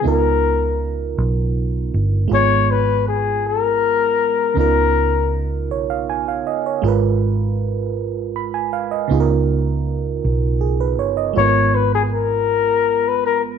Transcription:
<<
  \new Staff \with { instrumentName = "Flugelhorn" } { \time 6/8 \key gis \dorian \tempo 4. = 53 ais'4 r2 | cis''8 b'8 gis'8 ais'4. | ais'4 r2 | r2. |
r2. | cis''8 b'16 gis'16 ais'4~ ais'16 b'16 ais'8 | }
  \new Staff \with { instrumentName = "FM electric piano" } { \time 6/8 \key gis \dorian << { r2. | r2. | r4. cis''16 eis''16 gis''16 eis''16 dis''16 cis''16~ | cis''16 r4. r16 b''16 gis''16 eis''16 dis''16~ |
dis''16 r4. r16 gis'16 b'16 cis''16 dis''16~ | dis''16 r2 r8. | } \\ { <cis b dis' eis' ais'>2. | <gis b eis' gis'>2. | <cis b dis' eis' ais'>2. | <gis eis' ais' b'>2. |
<cis b dis' eis' gis' ais'>2. | <gis b eis' ais'>2. | } >> }
  \new Staff \with { instrumentName = "Fingered electric bass" } { \clef bass \time 6/8 \key gis \dorian cis,4. b,,4 g,,8 | gis,,2. | cis,4. b,,4 g,,8 | gis,,2. |
cis,4. b,,4 g,,8 | gis,,2. | }
>>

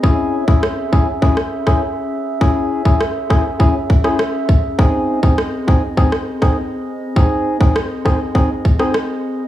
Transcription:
<<
  \new Staff \with { instrumentName = "Glass harmonica" } { \time 4/4 \key cis \minor \tempo 4 = 101 <cis' gis' e''>1~ | <cis' gis' e''>1 | <bis gis' dis''>1~ | <bis gis' dis''>1 | }
  \new Staff \with { instrumentName = "Synth stab" } { \time 4/4 \key cis \minor <cis' e' gis'>8. <cis' e' gis'>16 r8 <cis' e' gis'>16 r16 <cis' e' gis'>16 r8 <cis' e' gis'>16 r4 | <cis' e' gis'>8. <cis' e' gis'>16 r8 <cis' e' gis'>16 r16 <cis' e' gis'>16 r8 <cis' e' gis'>16 r4 | <bis dis' gis'>8. <bis dis' gis'>16 r8 <bis dis' gis'>16 r16 <bis dis' gis'>16 r8 <bis dis' gis'>16 r4 | <bis dis' gis'>8. <bis dis' gis'>16 r8 <bis dis' gis'>16 r16 <bis dis' gis'>16 r8 <bis dis' gis'>16 r4 | }
  \new DrumStaff \with { instrumentName = "Drums" } \drummode { \time 4/4 bd8. bd16 ss8 bd8 bd16 ss8 <bd ss>16 r4 | bd8. bd16 ss8 <bd ss>8 bd8 bd16 ss16 ss8 bd8 | bd8. bd16 ss8 bd8 bd16 ss8 <bd ss>16 r4 | bd8. bd16 ss8 <bd ss>8 bd8 bd16 ss16 ss4 | }
>>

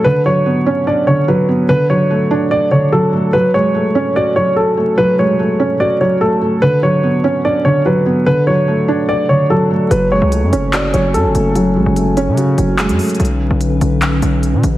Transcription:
<<
  \new Staff \with { instrumentName = "Grand piano" } { \time 4/4 \key fis \minor \tempo 4 = 146 b'8 cis''4. d''8 cis''8 b'4 | b'8 cis''4. d''8 cis''8 a'4 | b'8 cis''4. d''8 cis''8 a'4 | b'8 cis''4. d''8 cis''8 a'4 |
b'8 cis''4. d''8 cis''8 b'4 | b'8 cis''4. d''8 cis''8 a'4 | b'8 cis''4. d''8 cis''8 a'4 | r1 |
r1 | }
  \new Staff \with { instrumentName = "Analog synth pad" } { \time 4/4 \key fis \minor r1 | r1 | r1 | r1 |
r1 | r1 | <fis cis' gis''>1~ | <fis cis' gis''>1 |
<d cis' b'>1 | }
  \new Staff \with { instrumentName = "Felt piano" } { \time 4/4 \key fis \minor d8 fis8 b8 cis'8 d'8 d8 fis8 b8 | d8 fis8 a8 d'8 d''8 d8 fis8 a8 | fis8 gis8 a8 cis'8 fis'8 fis4 a8 | fis8 gis8 a8 cis'8 fis'8 fis8 a8 a8 |
d8 fis8 b8 cis'8 d'8 d8 fis8 b8 | d8 fis8 a8 d'8 d''8 d8 fis8 a8 | fis8 gis8 a8 cis'8 fis'8 fis4 a8 | fis8 gis8 a8 cis'8 fis'8 fis8 gis8 a8 |
r1 | }
  \new Staff \with { instrumentName = "808-style bass" } { \clef bass \time 4/4 \key fis \minor r1 | r1 | r1 | r1 |
r1 | r1 | fis,,8. cis,8 fis,16 fis,,4 fis,,8 fis,16 fis,,16 fis,,8~ | fis,,8 a,,16 fis,,4 cis8. fis,,8. fis,16 r8 |
b,,8. b,,8. b,,4 b,,8. b,16 a,,8 | }
  \new DrumStaff \with { instrumentName = "Drums" } \drummode { \time 4/4 r4 r4 r4 r4 | r4 r4 r4 r4 | r4 r4 r4 r4 | r4 r4 r4 r4 |
r4 r4 r4 r4 | r4 r4 r4 r4 | hh4 hh8 hh8 <hc hh>8 hh8 hh8 hh8 | hh4 hh8 hh8 hh8 hh8 <hc hh>16 hh16 hho16 hh32 hh32 |
hh32 hh8. r32 hh8 hh8 <hc hh>8 hh8 hh8 hh8 | }
>>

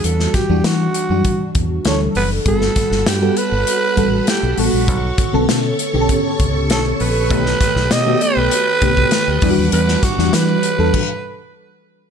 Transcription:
<<
  \new Staff \with { instrumentName = "String machine" } { \time 4/4 \key b \minor \tempo 4 = 99 << { r1 | <fis'' b''>1 | <cis'' cis'''>1 | <g'' dis'''>2.~ <g'' dis'''>8 <fis'' d'''>8~ |
<fis'' d'''>2 r2 | } \\ { r1 | a'1~ | a'1~ | a'2.~ a'8 g8~ |
g2 r2 | } >> }
  \new Staff \with { instrumentName = "Alto saxophone" } { \time 4/4 \key b \minor a'8 g'8 fis'4. r8 cis''8 b'8 | a'4 g'8 b'4. g'8 fis'8~ | fis'4. r4. a'8 b'8~ | b'4 dis''8 b'2~ b'8 |
b'8 fis'8 b'2 r4 | }
  \new Staff \with { instrumentName = "FM electric piano" } { \time 4/4 \key b \minor <e g d' fis'>8 r16 <e g d' fis'>4 <e g d' fis'>4 r16 <e g d' a'>4 | <g b fis' a'>4 r16 <g b fis' a'>4 r16 <g b fis' a'>4 <g b fis' a'>8 | r8. <d b cis' a'>4 <d b cis' g' a'>4 r16 <d b cis' a'>4 | <dis a b g'>4 r16 <dis a b fis' g'>4 r16 <dis a b g'>4 <e g d' e' fis'>8~ |
<e g d' e' fis'>8 r16 <e g d' fis'>4 <e g d' a'>16 r2 | }
  \new Staff \with { instrumentName = "Fingered electric bass" } { \clef bass \time 4/4 \key b \minor e,8 r16 e,16 e8 r16 fis,16 r8 e,8 d,8 fis,,8 | g,,8 r16 g,,16 g,8 r16 g,,16 r8 a,,8 r16 b,,16 a,,16 ais,,16 | b,,8 r16 b,,16 b,8 r16 b,,16 r8 cis,8 b,,8 ais,,8 | b,,8 r16 b,,16 b,8 r16 b,,16 r8 c,8 r16 d,16 e,16 dis,16 |
e,8 r16 e,16 e8 r16 e,16 r2 | }
  \new DrumStaff \with { instrumentName = "Drums" } \drummode { \time 4/4 hh16 sn16 <hh bd sn>8 <hh sn>8 hh8 <hh bd>8 <hh bd>8 <hh sn>8 hho8 | <hh bd>16 sn16 <hh bd sn>16 sn16 <hh sn>8 hh8 hh8 <hh bd>8 <hh sn>8 hho8 | <hh bd>8 <hh bd>8 <hh sn>8 hh8 <hh bd>8 <hh bd>8 <hh sn>8 hho8 | <hh bd>16 sn16 <hh bd sn>16 sn16 <hh sn>8 hh8 hh8 <hh bd>16 bd16 <hh sn>8 <hho bd>8 |
hh16 sn16 <hh bd sn>16 sn16 <hh sn>8 hh8 <cymc bd>4 r4 | }
>>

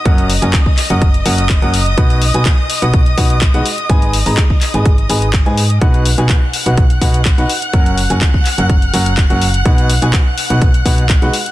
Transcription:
<<
  \new Staff \with { instrumentName = "Violin section" } { \time 4/4 \key b \major \tempo 4 = 125 <dis'' dis'''>1~ | <dis'' dis'''>1~ | <dis'' dis'''>1 | <fis'' fis'''>1~ |
<fis'' fis'''>1~ | <fis'' fis'''>1 | }
  \new Staff \with { instrumentName = "Grand piano" } { \time 4/4 \key b \major <fis cis' fis' ais' fis''>8 r16 <fis cis' fis' ais' gis''>16 r8. <fis cis' fis' ais' fis''>16 r8 <fis cis' fis' ais' fis''>16 r8 <fis cis' fis' ais' fis''>16 r8 | <b, dis' fis' b' fis''>8 r16 <b, dis' fis' b' gis''>16 r8. <b, dis' fis' b' fis''>16 r8 <b, dis' fis' b' fis''>16 r8 <gis dis' fis' b' fis''>16 r8 | <gis dis' gis' b' gis''>8 r16 <gis dis' gis' b' ais''>16 r8. <gis dis' gis' b' gis''>16 r8 <gis dis' gis' b' gis''>16 r8 <gis dis' gis' b' gis''>16 r8 | <b, dis' fis' b' fis''>8 r16 <b, dis' fis' b' gis''>16 r8. <b, dis' fis' b' fis''>16 r8 <b, dis' fis' b' fis''>16 r8 <dis' fis' b' fis''>16 r8 |
<fis cis' fis' ais' fis''>8 r16 <fis cis' fis' ais' gis''>16 r8. <fis cis' fis' ais' fis''>16 r8 <fis cis' fis' ais' fis''>16 r8 <fis cis' fis' ais' fis''>16 r8 | <b, dis' fis' b' fis''>8 r16 <b, dis' fis' b' gis''>16 r8. <b, dis' fis' b' fis''>16 r8 <b, dis' fis' b' fis''>16 r8 <gis dis' fis' b' fis''>16 r8 | }
  \new Staff \with { instrumentName = "FM bass" } { \clef bass \time 4/4 \key b \major fis,,8. fis,,16 r8. fis,,8. fis,,8. fis,,8. | b,,8. b,,16 r8. b,,8. b,,8. b,,16 r8 | gis,,8. gis,,16 r8. gis,,8. gis,,8. gis,8. | b,,8. b,,16 r8. b,,8. b,,8. b,,16 r8 |
fis,,8. fis,,16 r8. fis,,8. fis,,8. fis,,8. | b,,8. b,,16 r8. b,,8. b,,8. b,,16 r8 | }
  \new DrumStaff \with { instrumentName = "Drums" } \drummode { \time 4/4 <hh bd>16 hh16 hho16 hh16 <hc hh bd>16 bd16 <hc hho>16 hh16 <hh bd>16 hh16 hho16 hh16 <hc hh bd>16 hh16 hho8 | <hh bd>16 hh16 hho16 hh16 <hc hh bd>8 hho16 hh16 <hh bd>16 hh16 <hho bd>16 hh16 <hc hh bd>16 hh16 hho16 hh16 | <hh bd>16 hh16 hho16 hho16 <hc hh bd>16 bd16 <hc hho>16 hh16 <hh bd>16 hh16 hho16 hh16 <hc hh bd>16 hh16 hho16 hh16 | <hh bd>16 hh16 hho16 hh16 <hc hh bd>8 hho16 hh16 <hh bd>16 hh16 <hho bd>16 hh16 <hc hh bd>16 hh16 hho16 hh16 |
<hh bd>16 hh16 hho16 hh16 <hc hh bd>16 bd16 <hc hho>16 hh16 <hh bd>16 hh16 hho16 hh16 <hc hh bd>16 hh16 hho16 hh16 | <hh bd>16 hh16 hho16 hh16 <hc hh bd>8 hho16 hh16 <hh bd>16 hh16 <hho bd>16 hh16 <hc hh bd>16 hh16 hho16 hh16 | }
>>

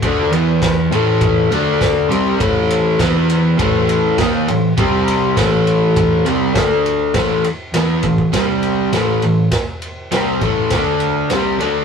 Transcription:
<<
  \new Staff \with { instrumentName = "Overdriven electric guitar" } { \clef bass \time 4/4 \key d \major \tempo 4 = 101 <d a d'>8 <e b e'>4 <a, e a>4 <d a d'>4 <c g c'>8 | <a, e a>4 <e b e'>4 <a, e a>4 <dis bes dis'>8 <a, e>8 | <c g c'>4 <a, e a>4. <c g c'>8 <d a d'>4 | <a, e a>8 r8 <e b e'>8 <a, e>8 <c g c'>4 <a, e a>8 <a, e>8 |
r4 <c g c'>8 <a, e a>8 <d a d'>4 <c g c'>8 <d a d'>8 | }
  \new Staff \with { instrumentName = "Picked electric bass" } { \clef bass \time 4/4 \key d \major d,8 e,4 a,,4 d,4 c,8 | a,,4 e,4 a,,4 dis,8 a,,8 | r4 a,,4. c,8 d,4 | a,,8 r8 e,8 a,,8 r4 a,,8 a,,8 |
r4 c,8 a,,8 d,4 c,8 d,8 | }
  \new DrumStaff \with { instrumentName = "Drums" } \drummode { \time 4/4 <bd cymr>8 cymr8 <bd cymr sn>8 cymr8 <bd cymr>8 cymr8 <bd cymr sn>8 cymr8 | <bd cymr>8 cymr8 <bd cymr sn>8 cymr8 <bd cymr>8 cymr8 <bd cymr sn>8 cymr8 | <bd cymr>8 cymr8 <bd cymr sn>8 cymr8 <bd cymr>8 cymr8 <bd cymr sn>8 cymr8 | <bd cymr sn>8 cymr8 <cymr sn>8 <bd cymr>16 bd16 <bd cymr sn>8 cymr8 <cymr sn>8 cymr8 |
<bd cymr sn>8 cymr8 <cymr sn>8 <bd cymr>8 <bd cymr sn>8 cymr8 <cymr sn>8 cymr8 | }
>>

